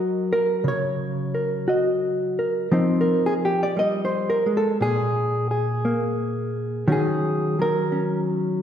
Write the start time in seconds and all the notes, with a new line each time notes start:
Already playing: F#3 F#4 A#4
0.33 A#4
0.64 C#3
0.68 C#5
1.35 A#4
1.68 F#4 D#5
2.39 A#4
2.72 F3 C4 D#4 C5
3.01 A#4
3.26 G#4
3.45 G4
3.63 D5
3.77 G3 D#5
4.05 C5
4.30 A#4
4.46 G#3
4.57 A4
4.81 A#2 G#4
5.51 G#4
5.85 A#3
6.88 D#3 F#3 C#4 F#4
6.92 G#4
7.59 F#3 A#4
7.92 C#4